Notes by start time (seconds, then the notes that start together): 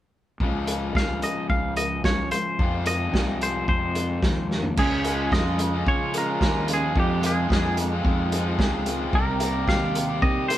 0.40 C#2 C#3 F3 G#3 C#4 F4, kick
0.67 closed hi-hat
0.95 C#2 F5, kick, snare
1.22 D#5, closed hi-hat
1.50 C#2 F5, kick
1.76 D#5, closed hi-hat
2.04 C#2 C#5, kick, snare
2.31 C5, closed hi-hat
2.59 F2 C3 F3 G#3 C4 F4, kick
2.86 D#5, closed hi-hat
3.13 C2, kick, snare
3.41 C5, closed hi-hat
3.68 F2 C5, kick
3.95 closed hi-hat
4.23 D#2, kick, snare
4.51 snare
4.63 floor tom
4.77 C#2 C#3 F3 G#3 C#4 F4 G#4, kick, crash
5.05 F3 G#3 C#4 F4, closed hi-hat
5.32 F2 C#3 F3 G#3 C#4 F4 D#5, kick, snare
5.46 G#3 C#4 F4
5.59 G#3, muted overdriven electric guitar stroke, closed hi-hat
5.73 G#3 C#4 F4
5.87 C#3 F3 C#5, kick
6.14 F3 G#3 C#4 F4 A#4, closed hi-hat
6.29 G#3 C#4 F4
6.41 D#2 C#3 F3 G#3 C#4 F4, kick, snare
6.56 G#3 C#4 F4
6.68 F3 G#3 C#4 F4, closed hi-hat
6.74 G#4
6.83 G#3 C#4 F4
6.96 F2 C3 F3 G#3 C4 F4, kick
7.00 G4
7.23 F3 G#3 C4 F4 G#4, closed hi-hat
7.49 F2 C3 F3 G#3 G#4, kick, snare
7.53 C4 F4
7.64 F3 G#3 C4 F4
7.77 G#3, muted overdriven electric guitar stroke, closed hi-hat
7.92 F3 G#3 C4 F4
8.03 F2 D#3, kick
8.32 F3 G#3 C4 F4, closed hi-hat
8.46 F3 G#3 C4 F4
8.59 C#2 F2 C3 F3 G#3 C4 F4 G#4, kick, snare
8.74 F3 G#3 C4 F4
8.86 F3 G#3 C4, closed hi-hat
8.90 F4
9.01 F3 G#3 C4 F4
9.13 C2 C3 D#3 G3 C4 G4 A#4, kick
9.40 D#3 G3 A#3 C4, closed hi-hat
9.45 G4
9.68 D#2 C3 D#3 G3 C4 G4 F5, kick, snare
9.82 G3 C4 G4
9.95 A#3, muted overdriven electric guitar stroke, closed hi-hat
10.09 G3 C4 G4
10.22 C3 D#3 D#5, kick
10.48 D#3 G3 A#3 C4 C5, closed hi-hat
10.53 G4